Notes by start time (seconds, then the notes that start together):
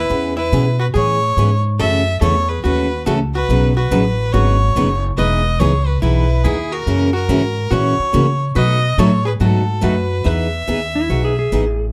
Already playing: E4 B4
0.09 E2 E3 B3 C#4 G#4
0.37 E4 B4
0.52 B2 E3 B3 C#4 G#4
0.80 F#4 B4
0.94 A2 E3 B3 C#4 G#4 C#5
1.37 G#2 E3 B3 C#4 G#4
1.79 F#2 C#3 E3 A3 C#4 F#4 A4 E5
2.21 E2 C#3 E3 A3 C#4 F#4 A4 C#5
2.49 G#4 B4
2.64 D#2 C#3 E3 A3 C#4 F#4 B4
3.06 C#2 C#3 E3 A3 C#4 F#4 A4
3.34 F#4 B4
3.49 B1 B2 C#3 F#3 B3 D#4 B4
3.76 F#4 B4
3.91 A1 B2 C#3 F#3 B3 D#4 B4
4.33 G#1 B2 C#3 F#3 B3 D#4 F#4 B4 C#5
4.76 F#1 B2 C#3 F#3 B3 D#4 B4
5.17 E1 E3 B3 D#4 G#4 B4 D#5
5.59 C#2 E3 B3 D#4 G#4 C#5
5.86 F#4 B4
6.02 B1 E3 B3 D#4 E4 G#4 B4
6.44 D#2 E3 B3 D#4 E4 G#4
6.72 F#4 A#4
6.86 F#2 C#3 E3 A#3 C#4 F#4
7.13 F#4 A#4
7.29 G#2 C#3 E3 A#3 C#4 F#4
7.71 A#2 C#3 E3 A#3 C#4 F#4 C#5
7.99 muted upright bass stroke
8.13 C#3 E3 A#3 C#4 F#4
8.55 B2 F#3 A3 D#4 F#4 B4 D#5
8.98 A2 B2 F#3 A3 D#4 F#4 A4 C#5
9.25 G#4 B4
9.40 G#2 B2 F#3 A3 D#4 F#4 A4
9.81 F#2 B2 F#3 A3 D#4 F#4 B4
10.24 E2 E3 B3 D#4 G#4 B4 E5
10.68 D#2 E3 B3 D#4 G#4
10.95 E4
11.10 B1 E3 B3 D#4 F#4 G#4
11.25 G#4
11.39 G#4
11.52 A1 E3 B3 D#4 G#4